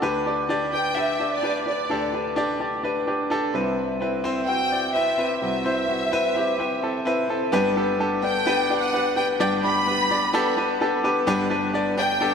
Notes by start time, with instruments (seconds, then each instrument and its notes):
0.02 grand piano D2 D3 D4 G4 B4
0.26 grand piano D4 G4 D5
0.49 grand piano D4 G4 D5
0.73 grand piano D4 G4 B4, violin section G5
0.96 grand piano D4 G4 B4, violin section E5
1.19 grand piano D4 G4 D5
1.33 violin section D5
1.43 grand piano D4 G4 B4
1.66 grand piano D4 G4 B4, violin section D5
1.90 grand piano D2 D3 D4 G4 A4
2.13 grand piano D4 G4 B4
2.36 grand piano D4 G4 D5
2.60 grand piano D4 G4 D5
2.83 grand piano D4 G4 B4
3.07 grand piano D4 G4 B4
3.30 grand piano D4 G4 A4
3.54 grand piano C2 C3 C4 E4 B4
4.01 grand piano C4 E4 B4
4.24 grand piano C4 E4 C5
4.47 grand piano C4 E4 F#4, violin section G5
4.71 grand piano C4 E4 D5
4.94 grand piano C4 E4 B4, violin section E5
5.18 grand piano C4 E4 B4
5.41 grand piano C2 C3 C4 E4 F#4, violin section E5
5.64 grand piano C4 E4 C5
5.88 grand piano C4 E4 F#4
6.12 grand piano C4 E4 B4
6.35 grand piano C4 E4 G4 B5
6.58 grand piano C4 E4 B4 G5
6.82 grand piano C4 E4 A4
7.05 grand piano C4 E4 B4 E5
7.29 grand piano C4 E4 A4
7.52 grand piano G1 G2 B3 D4 G4 B4
7.76 grand piano B3 D4 G4 A4
7.99 grand piano B3 D4 G4 A4
8.22 grand piano B3 D4 G4 D5, violin section G5
8.46 grand piano B3 D4 G4 B4
8.69 grand piano B3 D4 G4 D5
8.82 violin section F#5
8.93 grand piano B3 D4 G4 B4
9.16 grand piano B3 D4 G4 B4, violin section G5
9.39 grand piano G1 G2 B3 D4 G4 D5, violin section G5
9.63 grand piano B3 D4 G4 D5, violin section B5
9.87 grand piano B3 D4 G4 B4
10.10 grand piano B3 D4 G4 D5
10.33 grand piano B3 D4 G4 A4
10.57 grand piano B3 D4 G4 B4
10.80 grand piano B3 D4 G4 A4
11.03 grand piano B3 D4 G4 B4
11.27 grand piano G1 G2 B3 D4 G4 B4
11.50 grand piano B3 D4 G4 B4
11.73 grand piano B3 D4 G4 D5
11.97 grand piano B3 D4 G4 D5, violin section G5
12.20 grand piano B3 D4 G4 A4